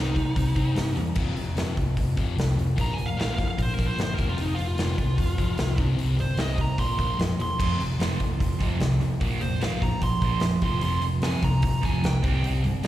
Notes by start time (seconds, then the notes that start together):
Already playing: C2 C3 G3 C4 D#4
0.15 C2 C3 G3, kick, open hi-hat
0.36 C2 C3 G3, kick, open hi-hat
0.55 C2 C3 G3 C4, kick, open hi-hat
0.75 G2 C3 G3, snare, open hi-hat
0.95 E2 C3 G3, open hi-hat
1.15 F1 F2 C3 F3, kick, crash
1.36 F1 F2 C3, open hi-hat
1.56 F1 F2 C3 F3, snare, open hi-hat
1.75 C2 F2 C3, kick, open hi-hat
1.97 F1 F2 C3, kick, open hi-hat
2.16 F1 F2 C3 F3, kick, open hi-hat
2.36 C2 F2 C3, snare, open hi-hat
2.57 F1 F2 C3, open hi-hat
2.76 A#1 A#2 F3 A#3, kick, open hi-hat
2.81 A#5
2.93 A#2 F3 G#5
2.98 F1, open hi-hat
3.06 F5
3.17 A#1 A#2 F3 A#3 F5, open hi-hat
3.21 snare
3.34 A#1 A#2 F3 F5
3.38 kick, open hi-hat
3.48 F5
3.58 A#1 A#2 F3, kick, open hi-hat
3.62 C5
3.74 A#1 A#2 F3 A#4
3.78 A#3, kick, open hi-hat
3.87 C5
3.98 G1 A#2 F3, snare, open hi-hat
4.03 C5
4.14 F2 C3 F3 A#4
4.19 F1, kick, open hi-hat
4.29 F4
4.38 F1 F2 C3 F3 D#4, open hi-hat
4.55 F1 F2 C3 F4
4.59 open hi-hat
4.68 F4
4.78 F1 F2 C3 F3, snare, open hi-hat
4.98 C2 F2 C3, kick, open hi-hat
5.17 F1 F2 C3, kick, open hi-hat
5.37 F1 F2 C3 F3, kick, open hi-hat
5.58 C2 F2 C3, snare, open hi-hat
5.78 C2 C3 G3 C4, kick, open hi-hat
5.96 C2 C3 G3 C4, open hi-hat
6.16 G1 C3 G3, open hi-hat
6.20 C5
6.37 C2 C3 G3 C4, snare, open hi-hat
6.41 D#5
6.57 C2 C3 G3, kick, open hi-hat
6.61 A#5
6.78 A#1 A#2 F3 A#3 C6, kick, open hi-hat
6.98 A#1 A#2 F3 A#3, kick, open hi-hat
7.18 F2 A#2 F3, snare, open hi-hat
7.39 E1 A#2 F3 C6, open hi-hat
7.58 F1 F2 C3 F3 C6, kick, crash
7.79 F1 F2 C3, open hi-hat
8.00 F1 F2 C3 F3, snare, open hi-hat
8.20 C2 F2 C3, kick, open hi-hat
8.40 F1 F2 C3, kick, open hi-hat
8.60 F1 F2 C3 F3, kick, open hi-hat
8.80 C2 F2 C3, snare, open hi-hat
8.99 F1 F2 C3, open hi-hat
9.20 A#1 A#2 F3 A#3, kick, open hi-hat
9.40 F1 A#2 F3 C5, open hi-hat
9.61 A#1 A#2 F3 A#3 F5, snare, open hi-hat
9.82 A#1 A#2 F3 A#5, kick, open hi-hat
10.02 A#1 A#2 F3 C6, kick, open hi-hat
10.21 A#1 A#2 F3 A#3, kick, open hi-hat
10.40 F2 A#2 F3, snare, open hi-hat
10.62 F1 F2 C3 F3 C6, kick, open hi-hat
10.81 F1 F2 C3 F3 C6, open hi-hat
11.01 F1 F2 C3, open hi-hat
11.22 F1 F2 C3 F3 G#5, snare, open hi-hat
11.42 C2 F2 C3 A#5, kick, open hi-hat
11.62 F1 F2 C3, kick, open hi-hat
11.82 F1 F2 C3 F3 G#5, kick, open hi-hat
12.03 C2 F2 C3 G5, snare, open hi-hat
12.23 C2 C3 G3 C4, kick, open hi-hat
12.43 C2 C3 G3 C4, open hi-hat
12.64 G1 C3 G3, open hi-hat
12.83 C3 G3, open hi-hat